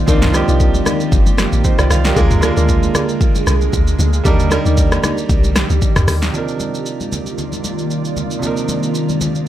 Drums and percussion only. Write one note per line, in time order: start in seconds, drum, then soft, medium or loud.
0.08 kick loud
0.08 low conga medium
0.08 shaker medium
0.22 snare medium
0.22 mid tom medium
0.22 shaker medium
0.34 cross-stick medium
0.34 high conga medium
0.34 shaker loud
0.48 shaker medium
0.60 kick loud
0.60 shaker medium
0.75 high conga medium
0.75 shaker medium
0.86 cross-stick loud
0.86 high conga medium
0.86 low conga medium
0.86 shaker loud
1.00 shaker medium
1.12 kick loud
1.12 shaker medium
1.27 high conga medium
1.27 shaker medium
1.38 cross-stick medium
1.38 snare medium
1.38 high conga medium
1.38 shaker loud
1.52 shaker soft
1.64 kick loud
1.64 shaker medium
1.79 cross-stick loud
1.79 shaker medium
1.90 cross-stick loud
1.90 high conga medium
1.90 low conga medium
1.90 shaker medium
2.05 snare medium
2.05 shaker medium
2.16 kick loud
2.16 low conga medium
2.16 shaker medium
2.31 mid tom medium
2.31 shaker medium
2.42 cross-stick medium
2.42 high conga medium
2.42 shaker loud
2.57 shaker medium
2.69 kick medium
2.69 shaker medium
2.83 high conga medium
2.83 shaker medium
2.95 cross-stick loud
2.95 high conga medium
2.95 low conga medium
2.95 shaker loud
3.09 shaker medium
3.21 kick loud
3.21 shaker medium
3.35 high conga medium
3.35 shaker medium
3.47 cross-stick medium
3.47 high conga medium
3.47 shaker medium
3.61 shaker soft
3.73 kick loud
3.73 shaker medium
3.88 shaker medium
3.99 high conga medium
3.99 low conga medium
3.99 shaker medium
4.13 shaker medium
4.25 kick loud
4.25 low conga medium
4.25 shaker medium
4.40 shaker medium
4.51 cross-stick medium
4.51 high conga medium
4.51 shaker loud
4.66 shaker medium
4.77 kick loud
4.77 shaker medium
4.92 cross-stick loud
4.92 high conga medium
4.92 shaker medium
5.04 cross-stick loud
5.04 high conga medium
5.04 low conga medium
5.04 shaker loud
5.18 shaker medium
5.29 kick loud
5.29 shaker medium
5.44 high conga medium
5.44 shaker medium
5.56 cross-stick medium
5.56 snare medium
5.56 high conga medium
5.56 shaker loud
5.70 shaker medium
5.82 kick loud
5.82 shaker medium
5.96 cross-stick loud
5.96 mid tom medium
5.96 shaker medium
6.08 cross-stick loud
6.08 open hi-hat medium
6.08 high conga medium
6.08 low conga medium
6.08 shaker medium
6.22 snare medium
6.22 shaker medium
6.34 low conga medium
6.34 shaker medium
6.48 shaker soft
6.60 high conga medium
6.60 shaker medium
6.75 shaker medium
6.86 shaker medium
7.01 high conga medium
7.01 shaker soft
7.12 high conga medium
7.12 low conga medium
7.12 shaker medium
7.26 shaker soft
7.38 low conga medium
7.38 shaker medium
7.53 high conga medium
7.53 shaker medium
7.64 high conga medium
7.64 shaker medium
7.79 shaker soft
7.90 shaker medium
8.05 shaker medium
8.17 high conga medium
8.17 low conga medium
8.17 shaker medium
8.31 shaker medium
8.42 low conga medium
8.42 shaker medium
8.57 shaker soft
8.69 high conga medium
8.69 shaker medium
8.83 shaker medium
8.95 shaker medium
9.09 high conga medium
9.09 shaker soft
9.21 high conga medium
9.21 low conga medium
9.21 shaker medium
9.35 shaker soft